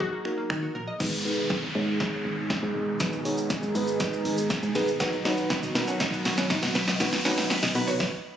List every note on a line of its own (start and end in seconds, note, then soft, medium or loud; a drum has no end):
0.00 0.12 D#2 medium
0.00 0.09 D#4 medium
0.00 0.71 F#4 medium
0.00 kick loud
0.13 0.22 A#3 medium
0.25 0.34 F#3 medium
0.25 0.70 A#3 medium
0.25 0.70 D#4 medium
0.25 0.70 F#4 medium
0.25 0.70 A#4 medium
0.25 finger snap medium
0.38 0.47 A#3 medium
0.50 0.67 D#3 medium
0.50 0.59 D#4 medium
0.50 finger snap loud
0.50 kick loud
0.63 0.72 F#4 medium
0.75 0.92 A#1 medium
0.75 0.84 A#4 medium
0.87 0.97 D#5 medium
1.00 1.42 G#1 loud
1.00 7.96 B2 medium
1.00 7.96 D#3 medium
1.00 4.96 G#3 medium
1.00 1.15 B3 medium
1.00 1.15 D#4 medium
1.00 7.96 D#4 medium
1.00 1.15 G#4 medium
1.00 4.96 G#4 medium
1.00 1.15 B4 loud
1.00 kick loud
1.00 snare medium
1.00 crash loud
1.00 downlifter medium
1.00 riser medium
1.25 1.55 B3 medium
1.25 1.55 D#4 medium
1.25 1.55 G#4 medium
1.25 1.55 B4 loud
1.50 kick loud
1.50 snare medium
1.63 1.71 G#1 medium
1.75 2.08 G#2 loud
1.75 2.35 B3 medium
1.75 2.35 D#4 medium
1.75 2.35 G#4 medium
1.75 2.35 C#5 medium
2.00 kick loud
2.00 snare medium
2.25 2.50 G#1 medium
2.50 kick loud
2.50 snare medium
2.63 2.71 G#2 loud
2.75 2.92 G#1 medium
3.00 3.42 G#1 loud
3.00 3.15 B3 medium
3.00 3.15 D#4 medium
3.00 3.15 G#4 medium
3.00 3.15 B4 loud
3.00 kick loud
3.00 snare medium
3.00 closed hi-hat medium
3.00 shaker medium
3.13 shaker soft
3.25 3.55 B3 medium
3.25 3.55 D#4 medium
3.25 3.55 G#4 medium
3.25 3.55 C#5 loud
3.25 open hi-hat medium
3.25 shaker medium
3.38 shaker medium
3.50 kick loud
3.50 snare medium
3.50 closed hi-hat medium
3.50 shaker medium
3.63 3.71 G#1 loud
3.63 shaker medium
3.75 4.08 G#2 loud
3.75 4.35 B3 medium
3.75 4.35 D#4 medium
3.75 4.35 G#4 medium
3.75 4.35 B4 medium
3.75 open hi-hat medium
3.75 shaker medium
3.88 shaker medium
4.00 kick loud
4.00 snare medium
4.00 closed hi-hat medium
4.00 shaker medium
4.13 shaker medium
4.25 4.50 G#1 medium
4.25 open hi-hat medium
4.25 shaker medium
4.38 shaker medium
4.50 kick loud
4.50 snare medium
4.50 closed hi-hat medium
4.50 shaker medium
4.63 4.71 G#2 medium
4.63 shaker medium
4.75 5.02 G#1 loud
4.75 4.90 B3 medium
4.75 4.90 D#4 medium
4.75 4.90 G#4 medium
4.75 4.90 B4 loud
4.75 snare medium
4.75 open hi-hat medium
4.75 shaker medium
4.88 shaker medium
5.00 5.42 B1 loud
5.00 5.09 F#3 loud
5.00 5.15 B3 medium
5.00 5.09 B3 medium
5.00 5.15 D#4 medium
5.00 5.15 F#4 medium
5.00 5.15 B4 medium
5.00 kick loud
5.00 snare loud
5.00 closed hi-hat medium
5.00 shaker medium
5.13 shaker soft
5.25 5.55 B3 medium
5.25 5.34 C#4 medium
5.25 5.55 D#4 medium
5.25 5.34 D#4 medium
5.25 5.55 F#4 medium
5.25 5.55 B4 loud
5.25 snare medium
5.25 open hi-hat medium
5.25 shaker medium
5.38 muted clean electric guitar stroke soft
5.38 shaker medium
5.50 5.59 B3 medium
5.50 5.59 B4 medium
5.50 kick loud
5.50 snare medium
5.50 closed hi-hat medium
5.50 shaker medium
5.63 5.71 B1 loud
5.63 5.72 D#5 medium
5.63 shaker medium
5.75 6.08 B2 loud
5.75 6.35 B3 medium
5.75 6.35 D#4 medium
5.75 6.35 F#4 medium
5.75 6.35 A#4 loud
5.75 5.84 B4 medium
5.75 muted clean electric guitar stroke soft
5.75 snare loud
5.75 open hi-hat medium
5.75 shaker medium
5.88 5.97 C#4 medium
5.88 5.97 F#4 medium
5.88 shaker medium
6.00 6.09 D#4 medium
6.00 kick loud
6.00 snare loud
6.00 closed hi-hat medium
6.00 shaker medium
6.13 6.22 B3 medium
6.13 muted clean electric guitar stroke soft
6.13 shaker medium
6.25 6.50 B1 medium
6.25 6.34 F#3 medium
6.25 snare loud
6.25 open hi-hat medium
6.25 shaker medium
6.38 6.47 B3 medium
6.38 6.47 C#4 medium
6.38 snare loud
6.38 shaker medium
6.50 6.59 D#4 medium
6.50 kick loud
6.50 snare loud
6.50 closed hi-hat medium
6.50 shaker medium
6.63 6.71 B2 medium
6.63 6.72 F#4 medium
6.63 snare loud
6.63 shaker medium
6.75 6.92 B1 loud
6.75 6.84 B4 medium
6.75 muted clean electric guitar stroke soft
6.75 snare loud
6.75 open hi-hat medium
6.75 shaker medium
6.88 6.97 B3 medium
6.88 6.97 D#5 medium
6.88 snare loud
6.88 shaker medium
7.00 7.42 B1 loud
7.00 7.09 F#3 loud
7.00 7.15 B3 medium
7.00 7.09 B3 medium
7.00 7.15 D#4 medium
7.00 7.15 F#4 medium
7.00 7.15 B4 loud
7.00 kick loud
7.00 snare loud
7.00 closed hi-hat medium
7.00 shaker medium
7.13 snare loud
7.13 shaker soft
7.25 7.55 B3 medium
7.25 7.34 C#4 medium
7.25 7.34 D#4 medium
7.25 7.55 D#4 medium
7.25 7.55 F#4 medium
7.25 7.55 B4 loud
7.25 snare loud
7.25 open hi-hat medium
7.25 shaker medium
7.38 muted clean electric guitar stroke soft
7.38 snare loud
7.38 shaker medium
7.50 7.59 B3 medium
7.50 7.59 B4 loud
7.50 snare loud
7.50 closed hi-hat medium
7.50 shaker medium
7.63 7.71 B1 loud
7.63 7.72 D#5 medium
7.63 snare loud
7.63 shaker medium
7.75 7.92 B2 loud
7.75 8.00 B3 medium
7.75 8.00 D#4 medium
7.75 8.00 F#4 medium
7.75 7.84 B4 medium
7.75 8.00 B4 loud
7.75 muted clean electric guitar stroke soft
7.75 open hi-hat medium
7.75 shaker medium
7.88 7.97 C#4 medium
7.88 7.97 F#4 medium
7.88 shaker medium
8.00 kick loud
8.00 snare loud